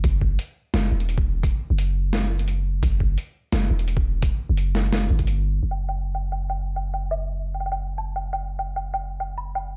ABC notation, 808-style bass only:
X:1
M:4/4
L:1/16
Q:1/4=172
K:Edor
V:1 name="808-style bass" clef=bass
F,,,4 z4 F,,,2 E,,,6- | E,,, z2 F,,,12- F,,, | F,,,4 z4 F,,,2 E,,,6- | E,,, z2 F,,,6- F,,, G,,,6 |
F,,,16- | F,,,16- | F,,,16 |]